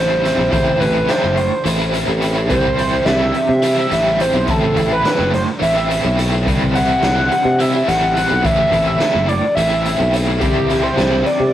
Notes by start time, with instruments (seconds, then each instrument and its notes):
Already playing: fretless electric bass A1, overdriven electric guitar E3 G3 C4, analog synth lead C5
0.00 overdriven electric guitar E4
0.24 overdriven electric guitar C3 E3 G3 C4 E4, snare, closed hi-hat
0.38 fretless electric bass A#1, overdriven electric guitar G3 C4 E4
0.51 fretless electric bass A1, overdriven electric guitar A2 E3 A3 C4 E4, analog synth lead C5, kick, closed hi-hat
0.80 fretless electric bass A1, overdriven electric guitar E3 A3 C4 E4, analog synth lead B4, closed hi-hat
1.08 overdriven electric guitar A2 E3 A3 C4 E4, analog synth lead C5, snare, closed hi-hat
1.23 fretless electric bass F#1, overdriven electric guitar A3 C4 E4
1.37 muted overdriven electric guitar stroke, closed hi-hat
1.64 fretless electric bass A1, overdriven electric guitar E3 A3 C4 E4, closed hi-hat
1.78 overdriven electric guitar A3 C4 E4
1.92 overdriven electric guitar E3 A3 C4 E4, closed hi-hat
2.08 fretless electric bass A1
2.21 overdriven electric guitar A2 E3 A3 C4 E4, closed hi-hat
2.35 overdriven electric guitar A3 C4 E4
2.49 fretless electric bass C2, overdriven electric guitar C3 E3 G3 C4 E4, analog synth lead C5, kick, closed hi-hat
2.78 overdriven electric guitar E3 G3 C4 E4, closed hi-hat
3.05 fretless electric bass C2, overdriven electric guitar C3 E3 G3 C4 E4, analog synth lead E5, snare, closed hi-hat
3.21 overdriven electric guitar G3 C4 E4
3.34 muted overdriven electric guitar stroke, closed hi-hat
3.49 fretless electric bass C3
3.62 overdriven electric guitar E3 G3 C4 E4, analog synth lead E5, closed hi-hat
3.78 overdriven electric guitar G3 C4 E4
3.91 fretless electric bass A1, overdriven electric guitar E3 G3 C4 E4, snare, closed hi-hat
4.20 overdriven electric guitar C3 E3 G3 C4 E4, analog synth lead C5, closed hi-hat
4.33 fretless electric bass B1, overdriven electric guitar G3 C4 E4
4.47 fretless electric bass A1, overdriven electric guitar A2 E3 A3 C4 E4, analog synth lead A4, kick, closed hi-hat
4.75 fretless electric bass A1, overdriven electric guitar E3 A3 C4 E4, closed hi-hat
4.93 analog synth lead B4
5.04 overdriven electric guitar A2 E3 A3 C4 E4, snare, closed hi-hat
5.18 fretless electric bass F#1, overdriven electric guitar A3 C4 E4
5.32 analog synth lead C5, muted overdriven electric guitar stroke, snare, closed hi-hat
5.59 fretless electric bass A1, overdriven electric guitar E3 A3 C4 E4, analog synth lead E5, closed hi-hat
5.75 overdriven electric guitar A3 C4 E4
5.89 overdriven electric guitar E3 A3 C4 E4, closed hi-hat
6.05 fretless electric bass B1
6.17 overdriven electric guitar A2 E3 A3 C4 E4, closed hi-hat
6.31 overdriven electric guitar A3 C4 E4
6.46 fretless electric bass C2, overdriven electric guitar C3 E3 G3 C4 E4, kick, closed hi-hat
6.75 overdriven electric guitar E3 G3 C4 E4, analog synth lead F#5, closed hi-hat
7.03 fretless electric bass C2, overdriven electric guitar C3 E3 G3 C4 E4, snare, closed hi-hat
7.18 overdriven electric guitar G3 C4 E4
7.31 muted overdriven electric guitar stroke, closed hi-hat
7.45 fretless electric bass C3
7.59 overdriven electric guitar E3 G3 C4 E4, analog synth lead E5, closed hi-hat
7.74 overdriven electric guitar G3 C4 E4
7.87 fretless electric bass A1, overdriven electric guitar E3 G3 C4 E4, analog synth lead F#5, snare, closed hi-hat
8.15 overdriven electric guitar C3 E3 G3 C4 E4, analog synth lead F#5, closed hi-hat
8.30 fretless electric bass B1, overdriven electric guitar G3 C4 E4
8.44 fretless electric bass A1, overdriven electric guitar A2 E3 A3 C4 E4, analog synth lead E5, kick, closed hi-hat
8.72 fretless electric bass A1, overdriven electric guitar E3 A3 C4 E4, closed hi-hat
8.87 analog synth lead E5
9.00 overdriven electric guitar A2 E3 A3 C4 E4, snare, closed hi-hat
9.14 fretless electric bass F#1, overdriven electric guitar A3 C4 E4
9.28 analog synth lead D5, muted overdriven electric guitar stroke, closed hi-hat
9.55 fretless electric bass A1, overdriven electric guitar E3 A3 C4 E4, analog synth lead E5, closed hi-hat
9.70 overdriven electric guitar A3 C4 E4
9.85 overdriven electric guitar E3 A3 C4 E4, closed hi-hat
10.00 fretless electric bass B1
10.13 overdriven electric guitar A2 E3 A3 C4 E4, closed hi-hat
10.27 overdriven electric guitar A3 C4 E4
10.40 fretless electric bass C2, overdriven electric guitar C3 E3 G3 C4 E4, analog synth lead G4, kick, closed hi-hat
10.70 overdriven electric guitar E3 G3 C4 E4, snare, closed hi-hat
10.83 analog synth lead C5
10.97 fretless electric bass C2, overdriven electric guitar C3 E3 G3 C4 E4, snare, closed hi-hat
11.10 overdriven electric guitar G3 C4 E4
11.25 analog synth lead D5, muted overdriven electric guitar stroke, snare, closed hi-hat
11.40 fretless electric bass C3